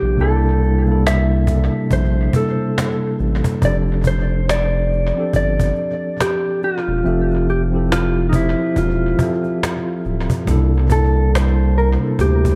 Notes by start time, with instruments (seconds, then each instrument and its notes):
Already playing: tine electric piano C3 G3 A#3 D4 E4 A4, clean electric guitar G4
0.02 sub bass A#1
0.17 sub bass C2, tine electric piano C3 G3 A#3 D4, cajon slap
0.21 tine electric piano E4 A4, clean electric guitar A4
0.46 cajon slap
0.63 cajon slap
0.86 tine electric piano C3 G3 A#3 D4, cajon slap
0.91 tine electric piano E4 A4
1.07 clean electric guitar E5, cajon slap
1.45 tine electric piano C3 G3 A#3 D4, cajon bass
1.50 tine electric piano E4 A4
1.91 sub bass A#1, clean electric guitar C5, cajon bass, cajon slap
2.33 tine electric piano C3 G3 A#3 D4, clean electric guitar A4, cajon bass
2.37 tine electric piano E4 A4
2.78 cajon slap
3.19 sub bass A1, cajon slap
3.44 cajon bass
3.61 sub bass F1, tine electric piano F3 C4 D4, clean electric guitar D5, cajon bass
3.66 tine electric piano G4 A4
3.89 cajon slap
4.04 clean electric guitar C5, cajon bass
4.29 cajon slap
4.49 clean electric guitar D5, cajon slap
4.92 cajon slap
5.14 tine electric piano F3 C4 D4
5.18 tine electric piano G4 A4
5.33 sub bass G1, clean electric guitar D5, cajon bass, cajon slap
5.59 cajon bass
5.75 cajon slap
6.20 clean electric guitar G4, cajon slap
6.62 clean electric guitar F4, cajon slap
6.88 sub bass E1
7.03 sub bass F1, tine electric piano F3 C4 E5, cajon slap
7.07 tine electric piano G4 A4
7.31 cajon slap
7.49 clean electric guitar G4, cajon slap
7.70 tine electric piano F3 C4 E4
7.74 tine electric piano G4 A4
7.92 clean electric guitar F4, cajon slap
8.29 tine electric piano F3 C4, clean electric guitar D#4, cajon bass
8.34 tine electric piano E4 G4 C5, clean electric guitar E4
8.76 sub bass E1, clean electric guitar F4, cajon bass, cajon slap
9.17 tine electric piano F3 C4 E5, cajon bass
9.21 tine electric piano G4 A4
9.44 cajon slap
9.63 cajon slap
10.05 sub bass D1, cajon slap
10.30 cajon bass
10.45 sub bass C2, tine electric piano C3 G3 A#3 D4, cajon bass
10.49 tine electric piano E4 A4
10.74 cajon slap
10.90 clean electric guitar A4, cajon bass
11.15 cajon slap
11.35 clean electric guitar C5, cajon slap
11.78 clean electric guitar A#4, cajon slap
11.98 tine electric piano C3 G3 A#3 D4
12.03 tine electric piano E4 A4
12.19 sub bass D2, clean electric guitar G4, cajon bass, cajon slap
12.45 cajon bass